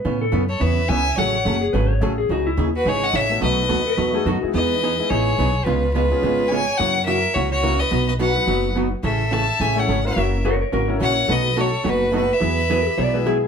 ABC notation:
X:1
M:4/4
L:1/16
Q:"Swing" 1/4=213
K:E
V:1 name="Fiddle"
z6 c2 e4 g4 | f6 z8 z2 | z6 B2 c2 f2 e4 | d12 z4 |
d8 c8 | B4 B8 g4 | f4 e4 c2 c4 d2- | d2 d2 f8 z4 |
e4 a4 g2 f4 e2- | e4 z8 f4 | d4 c4 B4 B2 e2- | e12 z4 |]
V:2 name="Violin"
z6 A2 B4 e4 | c6 z8 z2 | z6 F2 G2 d2 c4 | B12 z4 |
B8 G8 | ^E4 E8 c4 | c4 ^A4 F2 F4 B2- | B2 B2 B8 z4 |
A4 e4 e2 c4 ^A2- | ^A4 z8 c4 | B4 A4 F4 F2 B2- | B12 z4 |]
V:3 name="Electric slide guitar"
B2 A3 z8 z3 | z6 G2 B2 c4 G2 | F2 E3 z8 z3 | z6 B4 G2 F3 z |
z16 | z16 | z16 | z16 |
z16 | z4 [^Ac]2 [Ac]2 A3 z4 z | z16 | z4 B2 =G2 =d2 B2 ^G3 z |]
V:4 name="Upright piano"
z12 [B,CEAB]2 z2 | z12 [A,CFGA]2 z2 | z12 z2 [A,B,DFA]2- | [A,B,DFA]4 z6 [A,B,DFA]2 z2 [G,B,DEG]2- |
[G,B,DEG]4 z2 [G,B,DEG]6 z4 | z6 [G,B,C^EG]6 z4 | z12 [^A,CEF^A]2 z2 | z6 [F,B,DFB]6 [F,B,DFB]2 z2 |
z8 z2 [A,CEGA]2 z2 [^A,CEF^A]2- | [^A,CEF^A]4 z6 [A,CEFA]6 | z12 [A,B,DFA]2 z2 | z8 z2 [G,B,EFG]6 |]
V:5 name="Hollow-body jazz guitar"
[C,E,B,C]2 z2 [C,E,B,C]2 z2 [C,E,B,C]2 z2 [C,E,B,C]2 z2 | [C,F,A,CG]2 z2 [C,F,A,CG]2 z2 [C,F,A,CG]2 z2 [C,F,A,CG]2 z2 | [C,E,DG]2 z2 [C,E,DG]2 z2 [C,E,DG]2 z2 [C,E,DG]2 z2 | [B,,F,A,DF]2 z2 [B,,F,A,DF]2 z2 [B,,F,A,DF]2 z2 [B,,F,A,DF]2 z2 |
[E,B,DG]2 z2 [E,B,DG]2 z2 [E,B,DG]2 z2 [E,B,DG]2 z2 | [C,G,B,^EG]2 z2 [C,G,B,EG]2 z2 [C,G,B,EG]2 z2 [C,G,B,EG]2 z2 | [C,E,^A,CF]2 z2 [C,E,A,CF]2 z2 [C,E,A,CF]2 z2 [C,E,A,CF]2 z2 | [B,,F,B,DF]2 z2 [B,,F,B,DF]2 z2 [B,,F,B,DF]2 z2 [B,,F,B,DF]2 z2 |
[C,E,A,CG]2 z2 [C,E,A,CG]2 z2 [C,E,A,CG]2 z2 [C,E,A,CG]2 z2 | [C,E,^A,CF]2 z2 [C,E,A,CF]2 z2 [C,E,A,CF]2 z2 [C,E,A,CF]2 z2 | [B,,F,A,DF]2 z2 [B,,F,A,DF]2 z2 [B,,F,A,DF]2 z2 [B,,F,A,DF]2 z2 | [E,F,B,EG]2 z2 [E,F,B,EG]2 z2 [E,F,B,EG]2 z2 [E,F,B,EG]2 z2 |]
V:6 name="Upright bass" clef=bass
A,,4 F,,4 E,,4 C,,4 | A,,,4 F,,,4 G,,,4 A,,,4 | C,,4 D,,4 G,,,4 A,,,4 | B,,,4 D,,4 E,,4 F,,2 z2 |
E,,8 A,,,4 B,,,4 | C,,8 G,,,8 | F,,8 C,,8 | B,,,8 F,,,8 |
A,,,8 A,,,4 G,,,4 | F,,,8 G,,,4 ^A,,,4 | B,,,8 F,,,8 | E,,8 B,,,8 |]